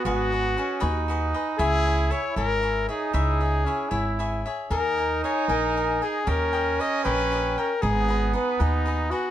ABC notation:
X:1
M:6/8
L:1/8
Q:3/8=77
K:G#m
V:1 name="Cavaquinho"
[FGBd] [GBd] [FGBd] [FGBd] [FGBd] [GBd] | [EGce] [Gce] [EGce] [EGce] [EGce] [Gce] | [EGce] [Gce] [EGce] [EGce] [EGce] [Gce] | [GAdg] [Adg] [GAdg] [GAdg] [GAdg] [Adg] |
[=GAd=g] [Adg] [GAdg] [GAdg] [GAdg] [Adg] | [DGBd] [GBd] [DGBd] [DGBd] [DGBd] [GBd] |]
V:2 name="Trumpet"
F4 z2 | G2 c A2 G | G4 z2 | A2 c A2 G |
A2 d B2 A | G2 B D2 F |]
V:3 name="Trumpet"
B,2 C D3 | E4 z D- | D2 C E2 z | D6 |
C6 | B,6 |]
V:4 name="Upright bass" clef=bass
G,,,3 D,,3 | C,,3 G,,,3 | C,,3 G,,,3 | D,,3 A,,,3 |
D,,3 A,,,3 | G,,,3 D,,3 |]